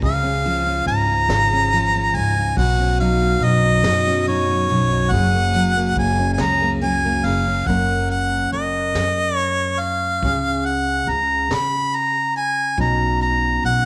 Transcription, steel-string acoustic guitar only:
Already playing: C#4
0.03 C#3 G#4
0.24 C#4
0.45 F3 F4
0.66 C#4
0.88 G#2
1.09 F4
1.31 C#3 G#4
1.53 C#4
1.73 F3 F4
1.95 C#4
2.17 G#2
2.38 F4
2.59 B2 F#4
2.79 C#4
3.00 F#3 D#4
3.22 C#4
3.43 F#2
3.65 D#4
3.85 B2 F#4
4.07 C#4
4.28 F#3 D#4
4.49 C#4
4.70 F#2
4.92 D#4
5.13 F#2 G#4
5.34 A#3
5.55 F#3 C#4
5.76 A#3
5.96 C#3
6.19 C#4
6.39 F#2 G#4
6.61 A#3
6.82 F#3 C#4
7.05 A#3
7.25 C#3
7.48 C#4
7.68 F#2 A#3 C#4 A#4
8.53 A#4
8.96 muted steel-string acoustic guitar stroke
10.24 C#3 C#4 G#4
11.10 G#4
11.51 muted steel-string acoustic guitar stroke
12.79 B2 C#4 D#4 F#4
13.65 F#4

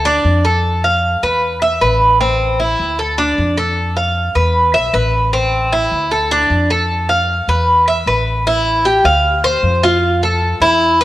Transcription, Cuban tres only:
0.05 D4
0.45 A4
0.84 F5
1.23 B4
1.62 E5
1.81 B4
2.21 C4
2.60 E4
2.99 A4
3.18 D4
3.58 A4
3.96 F5
4.35 B4
4.74 E5
4.94 B4
5.33 C4
5.72 E4
6.11 A4
6.31 D4
6.70 A4
7.09 F5
7.49 B4
7.88 E5
8.07 B4
8.47 E4
8.85 G4
9.05 F5
9.44 C5
9.83 F4
10.23 A4
10.62 E4
11.01 B4

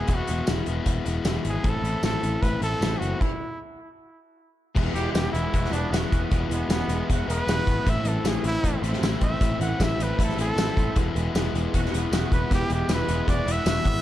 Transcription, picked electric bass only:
0.08 E1
0.29 E1
0.49 E1
0.68 E1
0.86 E1
1.06 E1
1.25 E1
1.45 G#1
1.64 A1
1.82 A1
2.03 A1
2.23 A1
2.42 A1
2.62 A1
2.81 A1
3.01 F#1
4.76 E1
4.94 E1
5.15 E1
5.34 E1
5.53 E1
5.72 E1
5.91 E1
6.12 E1
6.31 E1
6.50 E1
6.69 E1
6.88 E1
7.10 E1
7.28 E1
7.47 E1
7.66 G#1
7.87 A1
8.04 A1
8.24 A1
8.44 A1
8.63 A1
8.82 A1
9.02 A1
9.21 A1
9.41 A1
9.60 A1
9.80 A1
9.98 A1
10.19 A1
10.37 A1
10.56 A1
10.77 A1
10.96 E1
11.16 E1
11.35 E1
11.54 E1
11.74 E1
11.93 E1
12.12 E1
12.32 E1
12.51 E1
12.70 E1
12.89 E1
13.09 E1
13.28 E1
13.46 E1
13.66 E1
13.85 G#1

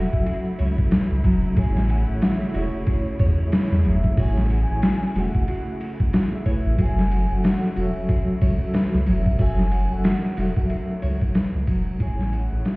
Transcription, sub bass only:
Already playing: E1
0.60 C#2
1.11 C#2
1.24 E1
1.57 A1
2.09 A1
2.55 E1
3.20 E2
3.71 E2
3.85 E1
4.18 A1
4.70 A1
5.15 E1
6.66 A1
6.79 F#1
7.31 F#1
7.77 E1
8.42 C#2
8.94 C#2
9.07 E1
9.39 F#1
9.92 F#1
10.38 E1
11.03 C#2
11.55 C#2
11.68 E1
12.00 A1
12.52 A1

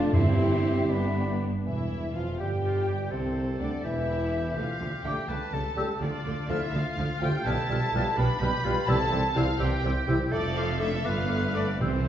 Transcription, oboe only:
0.14 C6
0.90 B5
2.40 G4
2.64 F4
2.88 G4
3.11 A4
3.84 G4
5.28 B4
5.54 A4
5.77 G4
6.00 F4
7.46 E4
8.17 D4
8.41 G4
8.65 F4
8.88 E4
9.59 G4
10.31 A4
11.05 B4
11.81 C5

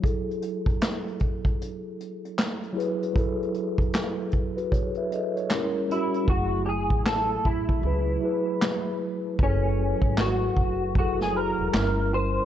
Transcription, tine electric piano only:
0.00 F#3 E4 G#4
0.05 A4
2.73 F#3 E4 G#4
2.78 B4
3.13 F#3 E4 G#4
3.18 A4
4.57 F#4 B4
4.72 G#4 C#5
4.98 B4 E5
5.14 A4 D#5
5.37 G#4 C#5
5.51 G3 C#4 E4
5.56 A#4
5.88 G3 C#4 E4
5.93 F#4
6.24 F#3 E4
6.30 A3
7.81 F#3 E4 G#4
7.87 B4
8.20 F#3 E4 G#4
8.25 B4
9.39 F#3 E4 G#4
9.44 A4
10.95 F#3 E4 G#4
11.00 A4
11.33 F#3 E4 G#4
11.38 F#4
11.71 G3 C#4 E4
11.77 A#4

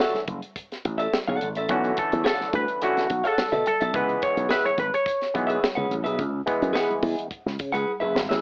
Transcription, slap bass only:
0.14 muted slap bass stroke
0.28 F#1
0.85 A1
1.28 B1
1.42 G#1
1.57 A1
1.69 B1
2.13 E2
2.41 muted slap bass stroke
2.53 D2
2.97 muted slap bass stroke
3.10 B1
3.52 B2
3.81 B1
3.94 C#2
4.37 B1
4.65 muted slap bass stroke
4.78 G#1
5.35 B1
5.77 C#2
5.91 A1
6.05 B1
6.19 C#2
6.62 F#2
6.90 muted slap bass stroke
7.03 E2
7.46 C#2
7.60 C#3
7.74 C#2
8.02 F#1
8.15 G#1
8.30 A1

